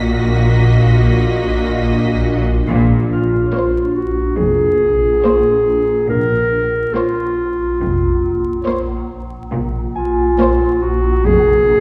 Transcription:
Already playing: double bass section A#1, synth drone A#1, cello section A#2, viola section A#3 F#4, violin section D#5 A#6 B6
2.67 double bass section A#1, synth drone A#1, cello section A#2
3.10 clarinet F4, harp F6
3.52 viola section A#3, violin section C5 C#5
3.95 clarinet F#4
4.37 double bass section F1, cello section F2, clarinet G#4
5.24 viola section A#3, violin section C5 C#5
6.09 double bass section A#1, synth drone A#1, cello section A#2, clarinet A#4
6.94 viola section A#3, clarinet F4, violin section C5 C#5
7.81 double bass section F1, cello section F2
8.66 viola section A#3, violin section C5 C#5
9.52 synth drone A#1, double bass section A#1, cello section A#2
9.95 clarinet F4, harp G#5
10.39 viola section A#3, violin section C5 C#5
10.83 clarinet F#4
11.24 double bass section F1, cello section F2, clarinet G#4

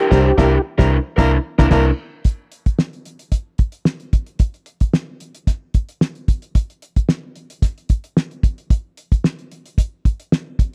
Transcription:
Already playing: tonewheel organ G4
0.00 overdriven electric guitar D4 E4 A#4
0.11 fingered electric bass C2, clav C3 G3, overdriven electric guitar D4 E4 C5, tenor saxophone A#4, kick, snare, crash
0.38 fingered electric bass C2, clav A#3 D4 E4, overdriven electric guitar D4 E4 A#4, tenor saxophone A#4, kick, snare
0.78 fingered electric bass C2, clav C3 G3, overdriven electric guitar D4 E4 A#4, tenor saxophone A#4, kick, snare
1.16 fingered electric bass C2, clav A#3 D4 E4, overdriven electric guitar D4 E4 A#4, tenor saxophone A#4, kick, snare
1.58 fingered electric bass C2, clav A#3 D4 E4, overdriven electric guitar D4 E4 A#4, tenor saxophone A#4, kick, snare
1.70 fingered electric bass C2, clav A#3 D4 E4, overdriven electric guitar D4 E4 A#4, tenor saxophone A#4, kick, snare, crash
2.25 kick, closed hi-hat
2.52 closed hi-hat
2.66 kick, closed hi-hat
2.79 snare
2.93 closed hi-hat
3.05 closed hi-hat
3.19 closed hi-hat
3.32 kick, closed hi-hat
3.58 kick, closed hi-hat
3.72 closed hi-hat
3.85 snare
4.00 closed hi-hat
4.13 kick, closed hi-hat
4.26 closed hi-hat
4.39 kick, closed hi-hat
4.54 closed hi-hat
4.66 closed hi-hat
4.80 kick, closed hi-hat
4.93 snare
5.20 closed hi-hat
5.35 closed hi-hat
5.47 kick, snare, closed hi-hat
5.74 kick, closed hi-hat
5.89 closed hi-hat
6.01 snare
6.15 closed hi-hat
6.28 kick, closed hi-hat
6.42 closed hi-hat
6.55 kick, closed hi-hat
6.70 closed hi-hat
6.82 closed hi-hat
6.96 kick, closed hi-hat
7.09 snare
7.36 closed hi-hat
7.50 closed hi-hat
7.62 kick, snare, closed hi-hat
7.78 closed hi-hat
7.89 kick, closed hi-hat
8.04 closed hi-hat
8.17 snare
8.31 closed hi-hat
8.43 kick, closed hi-hat
8.58 closed hi-hat
8.70 kick, closed hi-hat
8.97 closed hi-hat
9.12 kick, closed hi-hat
9.24 snare
9.39 closed hi-hat
9.52 closed hi-hat
9.66 closed hi-hat
9.78 kick, closed hi-hat
10.05 kick, closed hi-hat
10.20 closed hi-hat
10.32 snare
10.59 kick, closed hi-hat

